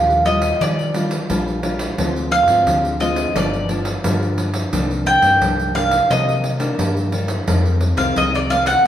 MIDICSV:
0, 0, Header, 1, 5, 480
1, 0, Start_track
1, 0, Tempo, 687285
1, 1384, Time_signature, 4, 2, 24, 8
1, 6195, End_track
2, 0, Start_track
2, 0, Title_t, "Mandolin"
2, 0, Program_c, 0, 25
2, 0, Note_on_c, 0, 77, 81
2, 155, Note_off_c, 0, 77, 0
2, 180, Note_on_c, 0, 75, 86
2, 415, Note_off_c, 0, 75, 0
2, 428, Note_on_c, 0, 74, 77
2, 659, Note_off_c, 0, 74, 0
2, 1618, Note_on_c, 0, 77, 98
2, 2072, Note_off_c, 0, 77, 0
2, 2098, Note_on_c, 0, 75, 84
2, 2333, Note_off_c, 0, 75, 0
2, 2349, Note_on_c, 0, 74, 80
2, 2578, Note_off_c, 0, 74, 0
2, 3540, Note_on_c, 0, 79, 104
2, 3992, Note_off_c, 0, 79, 0
2, 4016, Note_on_c, 0, 77, 97
2, 4251, Note_off_c, 0, 77, 0
2, 4265, Note_on_c, 0, 75, 94
2, 4408, Note_off_c, 0, 75, 0
2, 5570, Note_on_c, 0, 77, 82
2, 5692, Note_off_c, 0, 77, 0
2, 5709, Note_on_c, 0, 75, 89
2, 5822, Note_off_c, 0, 75, 0
2, 5834, Note_on_c, 0, 74, 81
2, 5938, Note_on_c, 0, 77, 92
2, 5944, Note_off_c, 0, 74, 0
2, 6051, Note_off_c, 0, 77, 0
2, 6054, Note_on_c, 0, 78, 92
2, 6174, Note_off_c, 0, 78, 0
2, 6195, End_track
3, 0, Start_track
3, 0, Title_t, "Nylon-string guitar"
3, 0, Program_c, 1, 24
3, 0, Note_on_c, 1, 46, 57
3, 0, Note_on_c, 1, 55, 67
3, 0, Note_on_c, 1, 62, 72
3, 0, Note_on_c, 1, 65, 74
3, 139, Note_off_c, 1, 55, 0
3, 141, Note_off_c, 1, 62, 0
3, 142, Note_off_c, 1, 65, 0
3, 181, Note_on_c, 1, 55, 61
3, 186, Note_on_c, 1, 65, 65
3, 402, Note_off_c, 1, 46, 0
3, 427, Note_on_c, 1, 51, 57
3, 624, Note_off_c, 1, 55, 0
3, 627, Note_off_c, 1, 65, 0
3, 658, Note_on_c, 1, 55, 61
3, 663, Note_on_c, 1, 62, 52
3, 663, Note_on_c, 1, 65, 64
3, 803, Note_off_c, 1, 55, 0
3, 804, Note_off_c, 1, 62, 0
3, 805, Note_off_c, 1, 65, 0
3, 881, Note_off_c, 1, 51, 0
3, 905, Note_on_c, 1, 46, 61
3, 907, Note_on_c, 1, 55, 61
3, 909, Note_on_c, 1, 62, 58
3, 912, Note_on_c, 1, 65, 64
3, 1106, Note_off_c, 1, 55, 0
3, 1108, Note_off_c, 1, 62, 0
3, 1109, Note_off_c, 1, 65, 0
3, 1139, Note_on_c, 1, 55, 60
3, 1143, Note_on_c, 1, 62, 58
3, 1144, Note_on_c, 1, 65, 64
3, 1343, Note_off_c, 1, 55, 0
3, 1344, Note_off_c, 1, 62, 0
3, 1345, Note_off_c, 1, 65, 0
3, 1360, Note_off_c, 1, 46, 0
3, 1388, Note_on_c, 1, 50, 59
3, 1388, Note_on_c, 1, 56, 61
3, 1390, Note_on_c, 1, 60, 58
3, 1395, Note_on_c, 1, 65, 63
3, 1610, Note_off_c, 1, 56, 0
3, 1612, Note_off_c, 1, 60, 0
3, 1613, Note_off_c, 1, 65, 0
3, 1731, Note_on_c, 1, 56, 62
3, 1734, Note_on_c, 1, 60, 70
3, 1736, Note_on_c, 1, 65, 78
3, 1842, Note_off_c, 1, 50, 0
3, 1863, Note_on_c, 1, 50, 57
3, 2058, Note_off_c, 1, 56, 0
3, 2060, Note_off_c, 1, 60, 0
3, 2060, Note_off_c, 1, 65, 0
3, 2094, Note_on_c, 1, 56, 67
3, 2097, Note_on_c, 1, 60, 64
3, 2100, Note_on_c, 1, 65, 67
3, 2300, Note_off_c, 1, 56, 0
3, 2302, Note_off_c, 1, 60, 0
3, 2302, Note_off_c, 1, 65, 0
3, 2318, Note_off_c, 1, 50, 0
3, 2342, Note_on_c, 1, 43, 55
3, 2346, Note_on_c, 1, 53, 56
3, 2346, Note_on_c, 1, 59, 61
3, 2349, Note_on_c, 1, 62, 61
3, 2545, Note_off_c, 1, 53, 0
3, 2546, Note_off_c, 1, 59, 0
3, 2547, Note_off_c, 1, 62, 0
3, 2576, Note_on_c, 1, 53, 64
3, 2579, Note_on_c, 1, 59, 60
3, 2582, Note_on_c, 1, 62, 65
3, 2720, Note_off_c, 1, 53, 0
3, 2722, Note_off_c, 1, 59, 0
3, 2723, Note_off_c, 1, 62, 0
3, 2798, Note_off_c, 1, 43, 0
3, 2821, Note_on_c, 1, 50, 63
3, 2822, Note_on_c, 1, 53, 65
3, 2824, Note_on_c, 1, 59, 58
3, 2828, Note_on_c, 1, 62, 69
3, 3130, Note_off_c, 1, 53, 0
3, 3132, Note_off_c, 1, 59, 0
3, 3134, Note_off_c, 1, 62, 0
3, 3278, Note_off_c, 1, 50, 0
3, 3296, Note_on_c, 1, 48, 57
3, 3300, Note_on_c, 1, 51, 61
3, 3304, Note_on_c, 1, 62, 60
3, 3305, Note_on_c, 1, 58, 55
3, 3622, Note_off_c, 1, 51, 0
3, 3622, Note_off_c, 1, 58, 0
3, 3624, Note_off_c, 1, 62, 0
3, 3644, Note_on_c, 1, 51, 62
3, 3646, Note_on_c, 1, 58, 70
3, 3650, Note_on_c, 1, 62, 75
3, 3755, Note_off_c, 1, 48, 0
3, 3780, Note_on_c, 1, 43, 60
3, 3974, Note_off_c, 1, 51, 0
3, 3975, Note_off_c, 1, 58, 0
3, 3977, Note_off_c, 1, 62, 0
3, 4012, Note_on_c, 1, 51, 58
3, 4015, Note_on_c, 1, 58, 58
3, 4017, Note_on_c, 1, 62, 68
3, 4158, Note_off_c, 1, 51, 0
3, 4158, Note_off_c, 1, 58, 0
3, 4160, Note_off_c, 1, 62, 0
3, 4236, Note_off_c, 1, 43, 0
3, 4259, Note_on_c, 1, 48, 59
3, 4261, Note_on_c, 1, 51, 62
3, 4263, Note_on_c, 1, 58, 53
3, 4581, Note_off_c, 1, 51, 0
3, 4583, Note_off_c, 1, 58, 0
3, 4604, Note_on_c, 1, 51, 71
3, 4606, Note_on_c, 1, 58, 67
3, 4611, Note_on_c, 1, 62, 76
3, 4716, Note_off_c, 1, 48, 0
3, 4742, Note_on_c, 1, 43, 61
3, 4934, Note_off_c, 1, 51, 0
3, 4936, Note_off_c, 1, 58, 0
3, 4937, Note_off_c, 1, 62, 0
3, 4975, Note_on_c, 1, 51, 64
3, 4980, Note_on_c, 1, 58, 53
3, 4982, Note_on_c, 1, 62, 62
3, 5119, Note_off_c, 1, 51, 0
3, 5122, Note_off_c, 1, 58, 0
3, 5123, Note_off_c, 1, 62, 0
3, 5197, Note_off_c, 1, 43, 0
3, 5218, Note_on_c, 1, 41, 60
3, 5224, Note_on_c, 1, 56, 63
3, 5225, Note_on_c, 1, 51, 64
3, 5229, Note_on_c, 1, 60, 68
3, 5447, Note_off_c, 1, 51, 0
3, 5448, Note_off_c, 1, 56, 0
3, 5449, Note_off_c, 1, 60, 0
3, 5565, Note_on_c, 1, 51, 69
3, 5569, Note_on_c, 1, 56, 61
3, 5572, Note_on_c, 1, 60, 77
3, 5677, Note_off_c, 1, 41, 0
3, 5695, Note_on_c, 1, 48, 59
3, 5895, Note_off_c, 1, 51, 0
3, 5897, Note_off_c, 1, 56, 0
3, 5899, Note_off_c, 1, 60, 0
3, 5932, Note_on_c, 1, 51, 63
3, 5938, Note_on_c, 1, 56, 54
3, 5940, Note_on_c, 1, 60, 70
3, 6155, Note_off_c, 1, 48, 0
3, 6158, Note_off_c, 1, 51, 0
3, 6160, Note_off_c, 1, 56, 0
3, 6161, Note_off_c, 1, 60, 0
3, 6195, End_track
4, 0, Start_track
4, 0, Title_t, "Fingered electric bass"
4, 0, Program_c, 2, 33
4, 0, Note_on_c, 2, 39, 88
4, 352, Note_off_c, 2, 39, 0
4, 423, Note_on_c, 2, 51, 90
4, 831, Note_off_c, 2, 51, 0
4, 904, Note_on_c, 2, 34, 85
4, 1312, Note_off_c, 2, 34, 0
4, 1382, Note_on_c, 2, 38, 93
4, 1689, Note_off_c, 2, 38, 0
4, 1728, Note_on_c, 2, 44, 83
4, 1836, Note_off_c, 2, 44, 0
4, 1862, Note_on_c, 2, 38, 86
4, 2270, Note_off_c, 2, 38, 0
4, 2341, Note_on_c, 2, 31, 91
4, 2749, Note_off_c, 2, 31, 0
4, 2821, Note_on_c, 2, 43, 92
4, 3229, Note_off_c, 2, 43, 0
4, 3300, Note_on_c, 2, 36, 96
4, 3607, Note_off_c, 2, 36, 0
4, 3645, Note_on_c, 2, 43, 82
4, 3754, Note_off_c, 2, 43, 0
4, 3778, Note_on_c, 2, 36, 93
4, 4187, Note_off_c, 2, 36, 0
4, 4260, Note_on_c, 2, 48, 86
4, 4668, Note_off_c, 2, 48, 0
4, 4739, Note_on_c, 2, 43, 87
4, 5148, Note_off_c, 2, 43, 0
4, 5221, Note_on_c, 2, 41, 97
4, 5527, Note_off_c, 2, 41, 0
4, 5568, Note_on_c, 2, 36, 82
4, 5676, Note_off_c, 2, 36, 0
4, 5701, Note_on_c, 2, 36, 89
4, 6110, Note_off_c, 2, 36, 0
4, 6195, End_track
5, 0, Start_track
5, 0, Title_t, "Pandeiro"
5, 71, Note_on_c, 9, 54, 36
5, 140, Note_off_c, 9, 54, 0
5, 177, Note_on_c, 9, 54, 60
5, 247, Note_off_c, 9, 54, 0
5, 290, Note_on_c, 9, 54, 69
5, 360, Note_off_c, 9, 54, 0
5, 427, Note_on_c, 9, 54, 78
5, 497, Note_off_c, 9, 54, 0
5, 551, Note_on_c, 9, 54, 33
5, 621, Note_off_c, 9, 54, 0
5, 659, Note_on_c, 9, 54, 63
5, 729, Note_off_c, 9, 54, 0
5, 774, Note_on_c, 9, 54, 69
5, 844, Note_off_c, 9, 54, 0
5, 905, Note_on_c, 9, 54, 86
5, 975, Note_off_c, 9, 54, 0
5, 1031, Note_on_c, 9, 54, 33
5, 1101, Note_off_c, 9, 54, 0
5, 1139, Note_on_c, 9, 54, 62
5, 1209, Note_off_c, 9, 54, 0
5, 1252, Note_on_c, 9, 54, 71
5, 1322, Note_off_c, 9, 54, 0
5, 1385, Note_on_c, 9, 54, 79
5, 1455, Note_off_c, 9, 54, 0
5, 1510, Note_on_c, 9, 54, 37
5, 1580, Note_off_c, 9, 54, 0
5, 1616, Note_on_c, 9, 54, 60
5, 1686, Note_off_c, 9, 54, 0
5, 1729, Note_on_c, 9, 54, 62
5, 1799, Note_off_c, 9, 54, 0
5, 1863, Note_on_c, 9, 54, 77
5, 1933, Note_off_c, 9, 54, 0
5, 1988, Note_on_c, 9, 54, 35
5, 2058, Note_off_c, 9, 54, 0
5, 2096, Note_on_c, 9, 54, 58
5, 2166, Note_off_c, 9, 54, 0
5, 2209, Note_on_c, 9, 54, 69
5, 2279, Note_off_c, 9, 54, 0
5, 2344, Note_on_c, 9, 54, 89
5, 2413, Note_off_c, 9, 54, 0
5, 2468, Note_on_c, 9, 54, 34
5, 2538, Note_off_c, 9, 54, 0
5, 2577, Note_on_c, 9, 54, 58
5, 2647, Note_off_c, 9, 54, 0
5, 2690, Note_on_c, 9, 54, 70
5, 2760, Note_off_c, 9, 54, 0
5, 2823, Note_on_c, 9, 54, 89
5, 2892, Note_off_c, 9, 54, 0
5, 2950, Note_on_c, 9, 54, 34
5, 3020, Note_off_c, 9, 54, 0
5, 3057, Note_on_c, 9, 54, 62
5, 3127, Note_off_c, 9, 54, 0
5, 3168, Note_on_c, 9, 54, 70
5, 3238, Note_off_c, 9, 54, 0
5, 3302, Note_on_c, 9, 54, 85
5, 3372, Note_off_c, 9, 54, 0
5, 3427, Note_on_c, 9, 54, 38
5, 3497, Note_off_c, 9, 54, 0
5, 3536, Note_on_c, 9, 54, 59
5, 3605, Note_off_c, 9, 54, 0
5, 3648, Note_on_c, 9, 54, 66
5, 3718, Note_off_c, 9, 54, 0
5, 3782, Note_on_c, 9, 54, 76
5, 3852, Note_off_c, 9, 54, 0
5, 3908, Note_on_c, 9, 54, 38
5, 3977, Note_off_c, 9, 54, 0
5, 4016, Note_on_c, 9, 54, 58
5, 4086, Note_off_c, 9, 54, 0
5, 4130, Note_on_c, 9, 54, 68
5, 4199, Note_off_c, 9, 54, 0
5, 4264, Note_on_c, 9, 54, 82
5, 4334, Note_off_c, 9, 54, 0
5, 4390, Note_on_c, 9, 54, 36
5, 4460, Note_off_c, 9, 54, 0
5, 4496, Note_on_c, 9, 54, 61
5, 4566, Note_off_c, 9, 54, 0
5, 4609, Note_on_c, 9, 54, 67
5, 4678, Note_off_c, 9, 54, 0
5, 4741, Note_on_c, 9, 54, 84
5, 4811, Note_off_c, 9, 54, 0
5, 4866, Note_on_c, 9, 54, 33
5, 4936, Note_off_c, 9, 54, 0
5, 4974, Note_on_c, 9, 54, 61
5, 5044, Note_off_c, 9, 54, 0
5, 5086, Note_on_c, 9, 54, 70
5, 5156, Note_off_c, 9, 54, 0
5, 5221, Note_on_c, 9, 54, 83
5, 5291, Note_off_c, 9, 54, 0
5, 5346, Note_on_c, 9, 54, 34
5, 5415, Note_off_c, 9, 54, 0
5, 5452, Note_on_c, 9, 54, 59
5, 5522, Note_off_c, 9, 54, 0
5, 5568, Note_on_c, 9, 54, 67
5, 5637, Note_off_c, 9, 54, 0
5, 5701, Note_on_c, 9, 54, 77
5, 5771, Note_off_c, 9, 54, 0
5, 5827, Note_on_c, 9, 54, 36
5, 5897, Note_off_c, 9, 54, 0
5, 5937, Note_on_c, 9, 54, 59
5, 6006, Note_off_c, 9, 54, 0
5, 6049, Note_on_c, 9, 54, 71
5, 6119, Note_off_c, 9, 54, 0
5, 6195, End_track
0, 0, End_of_file